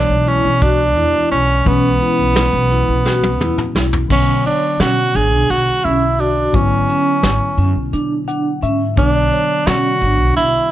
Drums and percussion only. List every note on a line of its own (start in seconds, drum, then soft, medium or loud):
0.27 closed hi-hat medium
0.62 kick medium
0.62 closed hi-hat medium
0.96 closed hi-hat medium
1.31 closed hi-hat medium
1.66 kick medium
1.66 closed hi-hat medium
2.01 closed hi-hat medium
2.36 snare loud
2.36 closed hi-hat medium
2.71 closed hi-hat medium
3.06 snare medium
3.23 high tom medium
3.41 mid tom medium
3.58 mid tom medium
3.76 snare medium
3.93 floor tom medium
4.10 kick medium
4.10 crash medium
4.45 closed hi-hat medium
4.80 snare medium
4.80 closed hi-hat medium
5.15 closed hi-hat medium
5.49 closed hi-hat medium
5.84 closed hi-hat medium
6.19 closed hi-hat medium
6.54 kick medium
6.54 closed hi-hat medium
6.89 closed hi-hat medium
7.23 snare medium
7.23 closed hi-hat medium
7.58 closed hi-hat medium
7.93 closed hi-hat medium
8.28 closed hi-hat medium
8.63 closed hi-hat medium
8.97 kick medium
8.97 closed hi-hat medium
9.32 closed hi-hat medium
9.67 snare medium
9.67 closed hi-hat medium
10.02 closed hi-hat medium
10.37 closed hi-hat medium